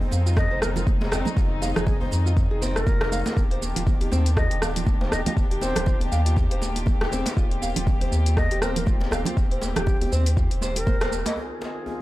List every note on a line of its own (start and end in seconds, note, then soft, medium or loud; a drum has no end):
0.00 11.33 D#3 medium
0.00 3.33 G#3 medium
0.00 3.33 C4 medium
0.00 3.33 D#4 medium
0.00 djembe bass medium
0.11 0.48 F2 medium
0.11 0.20 F5 medium
0.11 muted conga soft
0.11 high conga medium
0.11 djembe tone medium
0.11 shaker loud
0.26 0.36 F4 medium
0.26 shaker medium
0.36 0.60 D#5 medium
0.36 kick loud
0.36 cross-stick medium
0.36 muted conga soft
0.36 djembe tone loud
0.36 shaker soft
0.51 0.84 F1 medium
0.51 0.61 C5 medium
0.62 0.71 A#4 medium
0.62 cross-stick medium
0.62 djembe tone medium
0.62 shaker medium
0.76 0.82 F4 medium
0.76 0.83 A#4 medium
0.76 muted conga medium
0.76 low conga medium
0.76 shaker medium
0.87 1.23 F1 medium
0.87 kick loud
0.87 djembe tone medium
0.87 high conga loud
0.87 shaker soft
1.01 1.11 G#4 medium
1.01 muted conga soft
1.01 djembe slap loud
1.01 high conga loud
1.11 1.25 C4 loud
1.11 cross-stick medium
1.11 djembe tone loud
1.11 djembe bass loud
1.11 shaker medium
1.25 muted conga medium
1.25 high conga loud
1.25 low conga loud
1.25 shaker medium
1.37 1.73 F1 loud
1.37 1.50 F4 medium
1.37 kick loud
1.37 djembe tone medium
1.37 shaker soft
1.62 1.70 F5 medium
1.62 djembe slap medium
1.62 muted conga soft
1.62 djembe tone medium
1.62 shaker medium
1.76 2.09 F1 medium
1.76 1.86 F4 medium
1.76 1.98 G#4 medium
1.76 cross-stick medium
1.76 low conga loud
1.76 shaker medium
1.86 kick loud
1.86 muted conga soft
1.86 djembe tone loud
1.86 low conga medium
1.86 shaker soft
2.01 2.11 C5 medium
2.01 djembe bass medium
2.11 2.48 F2 medium
2.11 muted conga soft
2.11 djembe tone medium
2.11 shaker medium
2.26 2.32 F4 medium
2.26 shaker medium
2.37 kick loud
2.37 muted conga soft
2.37 djembe tone medium
2.37 shaker soft
2.51 2.84 F1 medium
2.51 2.61 G#4 medium
2.62 2.75 C4 loud
2.62 djembe slap medium
2.62 high conga medium
2.62 djembe tone medium
2.62 shaker medium
2.76 3.43 A#4 medium
2.76 cross-stick medium
2.76 muted conga soft
2.76 shaker medium
2.86 3.23 F1 medium
2.86 3.00 F4 medium
2.86 kick loud
2.86 djembe tone loud
2.86 high conga loud
2.86 shaker soft
3.01 cross-stick medium
3.01 djembe slap loud
3.01 muted conga soft
3.12 3.20 F5 medium
3.12 djembe tone medium
3.12 high conga medium
3.12 shaker medium
3.26 3.36 F4 medium
3.26 muted conga soft
3.26 djembe slap loud
3.26 high conga medium
3.26 shaker medium
3.37 3.73 D#1 loud
3.37 11.33 A#3 medium
3.37 7.33 D4 medium
3.37 11.33 G4 medium
3.37 kick loud
3.37 djembe tone medium
3.37 shaker soft
3.51 3.61 C5 medium
3.51 closed hi-hat soft
3.62 muted conga medium
3.62 djembe tone medium
3.62 shaker medium
3.76 4.09 D#1 medium
3.76 3.82 F4 medium
3.76 closed hi-hat medium
3.76 low conga medium
3.76 shaker medium
3.87 kick loud
3.87 muted conga soft
3.87 djembe tone medium
3.87 low conga medium
3.87 shaker soft
4.00 4.11 G4 medium
4.00 closed hi-hat soft
4.00 djembe bass medium
4.11 4.48 D#2 medium
4.11 4.25 C4 loud
4.11 muted conga soft
4.11 djembe tone medium
4.11 high conga medium
4.11 shaker medium
4.26 closed hi-hat medium
4.26 shaker medium
4.37 4.50 F4 medium
4.37 4.60 D#5 medium
4.37 kick loud
4.37 cross-stick medium
4.37 muted conga soft
4.37 djembe tone medium
4.37 shaker soft
4.51 4.84 D#1 medium
4.51 closed hi-hat soft
4.62 4.70 F5 medium
4.62 cross-stick medium
4.62 djembe tone medium
4.62 shaker medium
4.76 4.86 F4 medium
4.76 closed hi-hat medium
4.76 muted conga soft
4.76 low conga medium
4.76 shaker medium
4.87 5.23 D#1 medium
4.87 kick loud
4.87 high conga loud
4.87 djembe tone medium
4.87 shaker soft
5.01 5.11 C5 medium
5.01 muted conga soft
5.01 djembe slap loud
5.01 high conga medium
5.12 5.21 D#5 medium
5.12 cross-stick medium
5.12 djembe tone medium
5.12 djembe bass medium
5.12 shaker medium
5.26 5.32 F4 medium
5.26 5.33 D#5 medium
5.26 closed hi-hat medium
5.26 muted conga medium
5.26 high conga loud
5.26 low conga loud
5.26 shaker medium
5.37 5.73 D#1 loud
5.37 kick loud
5.37 djembe tone medium
5.37 shaker soft
5.51 5.61 G4 medium
5.51 closed hi-hat soft
5.61 5.75 C4 loud
5.61 6.01 C5 medium
5.61 muted conga medium
5.61 djembe slap medium
5.61 djembe tone loud
5.61 shaker medium
5.76 6.09 D#1 medium
5.76 cross-stick medium
5.76 closed hi-hat medium
5.76 low conga loud
5.76 shaker medium
5.86 6.00 F4 medium
5.86 kick loud
5.86 muted conga soft
5.86 djembe tone medium
5.86 low conga medium
5.86 shaker soft
6.00 closed hi-hat soft
6.00 djembe bass medium
6.12 6.48 D#2 medium
6.12 6.20 F5 medium
6.12 muted conga medium
6.12 djembe tone medium
6.12 shaker medium
6.26 6.36 F4 medium
6.26 closed hi-hat medium
6.26 shaker soft
6.36 kick loud
6.36 muted conga soft
6.36 djembe tone medium
6.36 shaker soft
6.51 6.84 D#1 medium
6.51 6.61 C5 medium
6.51 closed hi-hat soft
6.61 djembe slap medium
6.61 djembe tone medium
6.61 high conga medium
6.61 shaker medium
6.76 6.82 F4 medium
6.76 closed hi-hat medium
6.76 muted conga medium
6.76 shaker medium
6.86 7.23 D#1 medium
6.86 kick loud
6.86 high conga loud
6.86 djembe tone medium
6.86 shaker soft
7.01 7.11 G4 medium
7.01 cross-stick medium
7.01 djembe slap loud
7.01 muted conga soft
7.12 7.25 C4 loud
7.12 high conga medium
7.12 djembe tone medium
7.12 shaker medium
7.26 closed hi-hat medium
7.26 djembe slap loud
7.26 muted conga soft
7.26 high conga loud
7.26 shaker medium
7.37 7.73 D#1 loud
7.37 11.33 C4 medium
7.37 7.50 F4 medium
7.37 kick loud
7.37 djembe tone medium
7.37 shaker soft
7.51 closed hi-hat soft
7.62 7.70 F5 medium
7.62 muted conga medium
7.62 djembe tone medium
7.62 shaker medium
7.76 8.09 D#1 medium
7.76 7.86 F4 medium
7.76 closed hi-hat medium
7.76 low conga loud
7.76 shaker soft
7.87 kick loud
7.87 muted conga soft
7.87 djembe tone medium
7.87 low conga medium
7.87 shaker soft
8.01 8.11 C5 medium
8.01 closed hi-hat soft
8.01 djembe bass medium
8.11 8.48 D#2 medium
8.11 muted conga medium
8.11 high conga medium
8.11 djembe tone medium
8.11 shaker medium
8.26 8.32 F4 medium
8.26 closed hi-hat medium
8.26 shaker soft
8.37 8.60 D#5 medium
8.37 kick loud
8.37 cross-stick medium
8.37 muted conga soft
8.37 djembe tone medium
8.37 shaker soft
8.51 8.84 D#1 medium
8.51 8.61 G4 medium
8.51 closed hi-hat soft
8.62 8.76 C4 loud
8.62 8.71 A#4 medium
8.62 cross-stick medium
8.62 djembe tone medium
8.62 shaker medium
8.76 8.83 A#4 medium
8.76 closed hi-hat medium
8.76 muted conga medium
8.76 low conga medium
8.76 shaker soft
8.86 9.23 D#1 medium
8.86 9.00 F4 medium
8.86 kick loud
8.86 high conga loud
8.86 djembe tone medium
8.86 shaker soft
9.01 muted conga soft
9.01 djembe slap loud
9.01 high conga medium
9.11 9.20 F5 medium
9.11 cross-stick medium
9.11 djembe tone medium
9.11 djembe bass loud
9.11 shaker medium
9.25 9.36 F4 medium
9.25 closed hi-hat medium
9.25 muted conga medium
9.25 high conga medium
9.25 low conga loud
9.25 shaker soft
9.37 9.73 D#1 loud
9.37 kick loud
9.37 djembe tone medium
9.37 shaker soft
9.51 9.61 C5 medium
9.51 closed hi-hat soft
9.61 djembe slap medium
9.61 muted conga medium
9.61 djembe tone medium
9.61 high conga medium
9.61 shaker medium
9.76 10.09 D#1 medium
9.76 9.82 F4 medium
9.76 9.98 G4 medium
9.76 cross-stick medium
9.76 closed hi-hat medium
9.76 low conga loud
9.76 shaker medium
9.86 kick loud
9.86 muted conga soft
9.86 djembe tone medium
9.86 low conga loud
9.86 shaker soft
10.01 10.11 G4 medium
10.01 closed hi-hat soft
10.01 djembe bass loud
10.12 10.48 D#2 medium
10.12 10.26 C4 loud
10.12 muted conga medium
10.12 djembe tone medium
10.12 shaker medium
10.26 closed hi-hat medium
10.26 shaker soft
10.36 10.50 F4 medium
10.36 kick loud
10.36 muted conga soft
10.36 djembe tone medium
10.36 shaker soft
10.51 10.84 D#1 medium
10.51 closed hi-hat soft
10.61 10.75 C5 loud
10.61 djembe slap medium
10.61 high conga medium
10.61 djembe tone medium
10.61 shaker medium
10.76 10.86 G4 medium
10.76 11.37 A#4 medium
10.76 closed hi-hat medium
10.76 muted conga medium
10.76 shaker medium
10.86 11.23 D#1 medium
10.86 10.95 C5 medium
10.86 kick loud
10.86 djembe tone medium
10.86 high conga loud
10.86 shaker soft
11.01 11.11 C5 loud
11.01 cross-stick loud
11.01 closed hi-hat soft
11.01 muted conga soft
11.01 djembe slap loud
11.11 high conga medium
11.11 djembe tone medium
11.11 shaker medium
11.26 11.36 D#5 medium
11.26 closed hi-hat medium
11.26 djembe slap loud
11.26 muted conga medium
11.26 high conga medium
11.26 shaker soft
11.36 12.02 D#3 medium
11.36 12.02 C4 medium
11.36 12.02 F4 medium
11.36 12.02 G#4 medium
11.36 djembe tone medium
11.61 djembe slap medium
11.61 djembe tone medium
11.86 djembe tone medium